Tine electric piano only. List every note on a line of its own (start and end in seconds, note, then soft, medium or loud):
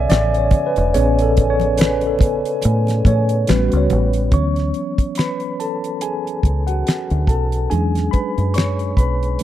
0.00 0.38 C#5 medium
0.00 0.10 D5 medium
0.00 0.10 E5 loud
0.10 0.36 D5 medium
0.38 0.67 C#5 medium
0.66 0.95 B4 medium
0.94 3.44 B3 soft
0.94 3.44 C#4 medium
0.94 3.44 G#4 medium
0.94 1.23 C#5 loud
1.22 1.48 A4 medium
1.50 1.79 C#5 loud
1.79 1.91 B4 medium
2.07 2.46 A4 medium
3.08 3.50 C#5 medium
3.48 4.28 G3 medium
3.48 4.29 B3 medium
3.48 4.29 C#4 soft
3.48 4.29 F#4 medium
3.48 3.78 B4 medium
3.77 4.29 C#5 medium
4.33 7.66 E3 soft
4.33 7.66 F#3 soft
4.33 7.67 B3 soft
4.33 7.67 C#4 soft
4.33 5.14 C#5 medium
4.33 5.20 C#6 medium
5.18 5.57 B4 medium
5.18 5.57 B5 medium
5.60 5.99 A4 medium
5.60 6.03 A5 medium
6.02 6.64 G#4 medium
6.02 6.69 G#5 medium
6.67 7.25 F#4 medium
6.67 7.30 F#5 medium
7.28 7.68 A4 medium
7.28 7.71 A5 medium
7.70 9.39 F#3 soft
7.70 9.39 G#3 soft
7.70 9.40 C#4 medium
7.70 9.43 D4 soft
7.70 8.10 G#4 medium
7.70 8.14 G#5 medium
8.11 8.52 B4 medium
8.11 8.51 B5 medium
8.54 8.95 C#5 medium
8.54 8.94 C#6 medium
8.97 9.43 B4 medium
8.97 9.43 B5 medium